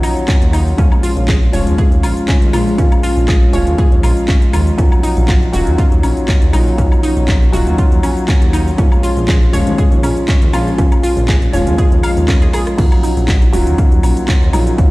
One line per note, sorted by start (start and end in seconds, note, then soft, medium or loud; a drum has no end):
0.00 0.74 F#3 medium
0.00 0.75 F#3 medium
0.00 0.74 A#3 medium
0.00 0.75 C#4 medium
0.00 0.74 D#4 medium
0.00 0.76 D#4 medium
0.00 0.11 D#4 loud
0.00 0.76 F4 loud
0.00 2.74 C#5 medium
0.00 4.74 F5 medium
0.00 open hi-hat loud
0.00 high woodblock medium
0.00 shaker medium
0.17 closed hi-hat soft
0.17 shaker soft
0.28 0.34 C#4 medium
0.28 kick loud
0.28 clap loud
0.28 closed hi-hat medium
0.28 shaker soft
0.42 0.72 D#2 medium
0.42 closed hi-hat medium
0.42 shaker soft
0.53 0.57 D#4 loud
0.53 open hi-hat medium
0.53 high woodblock medium
0.53 shaker medium
0.67 shaker soft
0.77 0.87 D#2 loud
0.77 1.50 F3 medium
0.77 1.50 G#3 medium
0.77 4.74 G#3 medium
0.77 0.84 C#4 medium
0.77 4.74 C#4 medium
0.77 1.51 C#4 medium
0.77 4.74 F4 medium
0.77 1.51 F4 medium
0.77 kick loud
0.77 closed hi-hat medium
0.77 shaker soft
0.92 high woodblock medium
0.92 shaker soft
1.03 1.11 F4 loud
1.03 open hi-hat loud
1.03 shaker medium
1.17 1.47 A#1 medium
1.17 closed hi-hat soft
1.17 shaker soft
1.28 1.34 G#4 loud
1.28 kick loud
1.28 clap loud
1.28 closed hi-hat medium
1.28 shaker soft
1.42 shaker soft
1.52 1.62 D#1 loud
1.52 2.50 F3 medium
1.52 2.50 G#3 medium
1.52 2.51 C#4 medium
1.52 2.51 F4 loud
1.52 1.57 C#5 loud
1.52 open hi-hat loud
1.52 shaker medium
1.67 1.74 D#2 medium
1.67 closed hi-hat soft
1.67 shaker soft
1.78 1.84 G#4 loud
1.78 kick loud
1.78 closed hi-hat medium
1.78 shaker soft
1.92 1.99 D#2 loud
1.92 closed hi-hat soft
1.92 shaker soft
2.03 2.12 A#1 medium
2.03 2.11 F4 loud
2.03 open hi-hat loud
2.03 high woodblock medium
2.03 shaker medium
2.17 closed hi-hat soft
2.17 shaker soft
2.28 2.34 C#4 loud
2.28 kick loud
2.28 clap loud
2.28 closed hi-hat medium
2.28 shaker soft
2.42 2.49 D#2 medium
2.42 closed hi-hat soft
2.42 shaker soft
2.53 2.70 A#1 loud
2.53 2.75 F3 medium
2.53 2.75 G#3 medium
2.53 2.76 C#4 medium
2.53 2.57 F4 loud
2.53 2.76 F4 medium
2.53 open hi-hat medium
2.53 high woodblock medium
2.53 shaker medium
2.67 shaker soft
2.77 2.87 D#2 medium
2.77 3.50 F3 medium
2.77 3.50 G#3 medium
2.77 2.84 C#4 medium
2.77 3.51 C#4 medium
2.77 3.51 F4 medium
2.77 4.76 D#5 medium
2.77 kick loud
2.77 closed hi-hat medium
2.77 shaker soft
2.92 closed hi-hat soft
2.92 high woodblock medium
2.92 shaker soft
3.03 3.11 F4 loud
3.03 open hi-hat loud
3.03 shaker medium
3.17 3.47 A#1 medium
3.17 closed hi-hat soft
3.17 shaker soft
3.28 3.34 G#4 loud
3.28 kick loud
3.28 clap loud
3.28 closed hi-hat medium
3.28 shaker soft
3.42 shaker soft
3.52 3.62 D#1 loud
3.52 4.75 F3 medium
3.52 4.75 G#3 medium
3.52 4.76 C#4 medium
3.52 4.76 F4 loud
3.52 3.57 C#5 loud
3.52 open hi-hat loud
3.52 shaker medium
3.67 3.74 D#2 medium
3.67 closed hi-hat soft
3.67 shaker soft
3.78 3.84 G#4 loud
3.78 kick loud
3.78 closed hi-hat medium
3.78 shaker soft
3.92 3.99 D#2 loud
3.92 closed hi-hat soft
3.92 shaker soft
4.03 4.12 A#1 loud
4.03 4.11 F4 loud
4.03 open hi-hat loud
4.03 high woodblock medium
4.03 shaker medium
4.17 closed hi-hat soft
4.17 shaker soft
4.28 4.34 C#4 loud
4.28 kick loud
4.28 clap loud
4.28 closed hi-hat medium
4.28 shaker soft
4.42 closed hi-hat soft
4.42 shaker soft
4.53 4.70 D#2 medium
4.53 4.57 F4 loud
4.53 open hi-hat medium
4.53 high woodblock medium
4.53 shaker medium
4.67 closed hi-hat soft
4.67 shaker soft
4.77 4.87 D#2 loud
4.77 5.50 F#3 medium
4.77 8.74 F#3 medium
4.77 8.74 A#3 medium
4.77 5.50 C#4 medium
4.77 4.84 C#4 medium
4.77 8.74 D#4 medium
4.77 5.51 D#4 medium
4.77 5.51 F4 medium
4.77 12.74 C#5 medium
4.77 10.74 F5 medium
4.77 kick loud
4.77 closed hi-hat medium
4.77 shaker soft
4.92 high woodblock medium
4.92 shaker soft
5.03 5.11 D#4 loud
5.03 open hi-hat loud
5.03 shaker medium
5.17 5.47 A#1 medium
5.17 closed hi-hat soft
5.17 shaker soft
5.28 5.34 F4 loud
5.28 kick loud
5.28 clap loud
5.28 closed hi-hat medium
5.28 shaker soft
5.42 shaker soft
5.52 5.62 D#1 loud
5.52 6.50 F#3 medium
5.52 6.50 C#4 medium
5.52 6.51 D#4 medium
5.52 6.51 F4 loud
5.52 5.57 F#4 loud
5.52 open hi-hat medium
5.52 shaker medium
5.67 5.74 D#2 medium
5.67 closed hi-hat soft
5.67 shaker soft
5.78 5.84 F4 loud
5.78 kick loud
5.78 closed hi-hat medium
5.78 shaker soft
5.92 5.99 D#2 loud
5.92 closed hi-hat soft
5.92 shaker soft
6.03 6.12 A#1 medium
6.03 6.09 C#4 medium
6.03 open hi-hat loud
6.03 high woodblock medium
6.03 shaker medium
6.17 closed hi-hat soft
6.17 shaker soft
6.28 6.34 C#4 loud
6.28 kick loud
6.28 clap loud
6.28 closed hi-hat medium
6.28 shaker soft
6.42 6.49 D#2 loud
6.42 closed hi-hat soft
6.42 shaker soft
6.53 6.70 A#1 loud
6.53 6.75 F#3 medium
6.53 6.75 C#4 medium
6.53 6.57 D#4 loud
6.53 6.76 D#4 medium
6.53 6.76 F4 medium
6.53 open hi-hat medium
6.53 high woodblock medium
6.53 shaker medium
6.67 shaker soft
6.77 6.87 D#2 loud
6.77 7.50 F#3 medium
6.77 7.50 C#4 medium
6.77 6.84 C#4 medium
6.77 7.51 F4 medium
6.77 kick loud
6.77 closed hi-hat medium
6.77 shaker soft
6.92 high woodblock medium
6.92 shaker soft
7.03 7.11 D#4 loud
7.03 open hi-hat loud
7.03 shaker medium
7.17 7.47 A#1 medium
7.17 closed hi-hat soft
7.17 shaker soft
7.28 7.34 F4 loud
7.28 kick loud
7.28 clap loud
7.28 closed hi-hat medium
7.28 shaker soft
7.42 shaker soft
7.52 7.62 D#1 loud
7.52 8.75 F#3 loud
7.52 8.75 C#4 medium
7.52 8.76 D#4 medium
7.52 8.76 F4 loud
7.52 7.57 F#4 loud
7.52 open hi-hat medium
7.52 shaker medium
7.67 7.74 D#2 medium
7.67 closed hi-hat medium
7.67 shaker soft
7.78 7.84 F4 loud
7.78 kick loud
7.78 closed hi-hat medium
7.78 shaker soft
7.92 7.99 D#2 loud
7.92 closed hi-hat soft
7.92 shaker soft
8.03 8.09 C#4 medium
8.03 open hi-hat loud
8.03 high woodblock medium
8.03 shaker medium
8.17 closed hi-hat soft
8.17 shaker soft
8.28 8.34 C#4 loud
8.28 kick loud
8.28 clap loud
8.28 closed hi-hat medium
8.28 shaker soft
8.42 8.72 D#2 medium
8.42 closed hi-hat medium
8.42 shaker soft
8.53 8.57 D#4 loud
8.53 open hi-hat medium
8.53 high woodblock medium
8.53 shaker medium
8.67 shaker soft
8.77 8.87 D#2 medium
8.77 9.50 F3 medium
8.77 9.50 G#3 medium
8.77 12.74 G#3 medium
8.77 12.74 C#4 medium
8.77 8.84 C#4 medium
8.77 9.51 C#4 medium
8.77 12.74 F4 medium
8.77 9.51 F4 medium
8.77 kick loud
8.77 closed hi-hat medium
8.77 shaker soft
8.92 high woodblock medium
8.92 shaker soft
9.03 9.11 F4 loud
9.03 open hi-hat loud
9.03 shaker medium
9.17 9.47 A#1 medium
9.17 closed hi-hat soft
9.17 shaker soft
9.28 9.34 G#4 loud
9.28 kick loud
9.28 clap loud
9.28 closed hi-hat medium
9.28 shaker soft
9.42 shaker soft
9.52 9.62 D#1 loud
9.52 10.50 F3 medium
9.52 10.50 G#3 medium
9.52 10.51 C#4 medium
9.52 10.51 F4 loud
9.52 9.57 C#5 loud
9.52 open hi-hat medium
9.52 shaker medium
9.67 9.74 D#2 medium
9.67 closed hi-hat medium
9.67 shaker soft
9.78 9.84 G#4 loud
9.78 kick loud
9.78 closed hi-hat medium
9.78 shaker soft
9.92 9.99 D#2 loud
9.92 closed hi-hat soft
9.92 shaker soft
10.03 10.12 A#1 medium
10.03 10.09 C#4 medium
10.03 open hi-hat loud
10.03 high woodblock medium
10.03 shaker medium
10.17 closed hi-hat soft
10.17 shaker soft
10.28 10.34 C#4 loud
10.28 kick loud
10.28 clap loud
10.28 closed hi-hat medium
10.28 shaker soft
10.42 10.49 D#2 medium
10.42 closed hi-hat medium
10.42 shaker soft
10.53 10.70 A#1 loud
10.53 10.75 F3 medium
10.53 10.75 G#3 medium
10.53 10.76 C#4 medium
10.53 10.57 F4 loud
10.53 10.76 F4 medium
10.53 open hi-hat medium
10.53 high woodblock medium
10.53 shaker medium
10.67 shaker soft
10.78 10.87 D#2 medium
10.78 11.50 F3 medium
10.78 11.50 G#3 medium
10.78 10.84 C#4 medium
10.78 11.51 C#4 medium
10.78 11.51 F4 medium
10.78 12.76 D#5 medium
10.78 kick loud
10.78 closed hi-hat medium
10.78 shaker soft
10.92 closed hi-hat soft
10.92 high woodblock medium
10.92 shaker soft
11.03 11.12 F4 loud
11.03 open hi-hat loud
11.03 shaker medium
11.17 11.47 A#1 medium
11.17 closed hi-hat soft
11.17 shaker soft
11.28 11.34 G#4 loud
11.28 kick loud
11.28 clap loud
11.28 closed hi-hat medium
11.28 shaker soft
11.42 closed hi-hat soft
11.42 shaker soft
11.52 11.62 D#1 loud
11.52 12.75 F3 loud
11.52 12.75 G#3 medium
11.52 12.76 C#4 medium
11.52 12.76 F4 loud
11.52 11.57 C#5 loud
11.52 open hi-hat medium
11.52 shaker medium
11.67 11.74 D#2 medium
11.67 closed hi-hat medium
11.67 shaker soft
11.78 11.84 G#4 loud
11.78 kick loud
11.78 closed hi-hat medium
11.78 shaker soft
11.92 11.99 D#2 loud
11.92 closed hi-hat soft
11.92 shaker soft
12.03 12.09 F5 loud
12.03 open hi-hat loud
12.03 high woodblock medium
12.03 shaker medium
12.17 12.47 D#2 loud
12.17 closed hi-hat soft
12.17 shaker soft
12.28 12.36 C#4 loud
12.28 kick loud
12.28 cross-stick medium
12.28 clap loud
12.28 closed hi-hat medium
12.28 shaker soft
12.42 12.46 G#4 medium
12.42 cross-stick medium
12.42 closed hi-hat medium
12.42 shaker soft
12.53 12.59 G#4 loud
12.53 cross-stick medium
12.53 open hi-hat medium
12.53 high woodblock medium
12.53 shaker medium
12.67 cross-stick medium
12.67 closed hi-hat soft
12.67 shaker soft
12.77 12.87 D#2 medium
12.77 13.50 F#3 medium
12.77 14.91 F#3 medium
12.77 14.91 A#3 medium
12.77 13.50 C#4 medium
12.77 12.84 C#4 medium
12.77 14.91 D#4 medium
12.77 13.51 D#4 medium
12.77 13.51 F4 medium
12.77 14.91 C#5 medium
12.77 14.91 F5 medium
12.77 kick loud
12.77 closed hi-hat medium
12.77 crash loud
12.77 shaker soft
12.92 closed hi-hat soft
12.92 high woodblock medium
12.92 shaker soft
13.03 13.12 D#4 loud
13.03 open hi-hat loud
13.03 shaker medium
13.17 13.47 A#1 medium
13.17 closed hi-hat medium
13.17 shaker soft
13.28 13.34 F4 loud
13.28 kick loud
13.28 clap loud
13.28 closed hi-hat medium
13.28 shaker soft
13.42 closed hi-hat soft
13.42 shaker soft
13.52 13.62 D#1 loud
13.52 14.50 F#3 loud
13.52 14.50 C#4 medium
13.52 14.51 D#4 medium
13.52 14.51 F4 loud
13.52 13.57 F#4 loud
13.52 open hi-hat loud
13.52 shaker medium
13.67 13.74 D#2 medium
13.67 closed hi-hat medium
13.67 shaker soft
13.78 13.84 F4 loud
13.78 kick loud
13.78 closed hi-hat medium
13.78 shaker soft
13.92 13.99 D#2 loud
13.92 closed hi-hat soft
13.92 shaker soft
14.03 14.12 A#1 medium
14.03 14.09 C#4 medium
14.03 open hi-hat loud
14.03 high woodblock medium
14.03 shaker medium
14.17 closed hi-hat medium
14.17 shaker soft
14.28 14.34 C#4 loud
14.28 kick loud
14.28 clap loud
14.28 closed hi-hat medium
14.28 shaker soft
14.42 14.49 D#2 loud
14.42 shaker soft
14.53 14.70 A#1 loud
14.53 14.75 F#3 medium
14.53 14.76 C#4 medium
14.53 14.57 D#4 loud
14.53 14.76 D#4 medium
14.53 14.76 F4 medium
14.53 open hi-hat medium
14.53 high woodblock medium
14.53 shaker medium
14.67 closed hi-hat medium
14.67 shaker soft
14.77 14.87 D#2 loud
14.77 14.91 F#3 medium
14.77 14.91 C#4 medium
14.77 14.84 C#4 medium
14.77 14.91 D#4 medium
14.77 14.91 F4 medium
14.77 kick loud
14.77 closed hi-hat medium
14.77 shaker soft